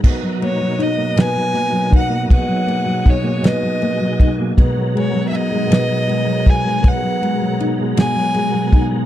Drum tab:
CC |x-----|------|------|------|
RD |-xxxxx|xxxxxx|xxxxxx|xxxxxx|
SD |---o--|---o--|---o--|---o--|
BD |o----o|o-o--o|o----o|o----o|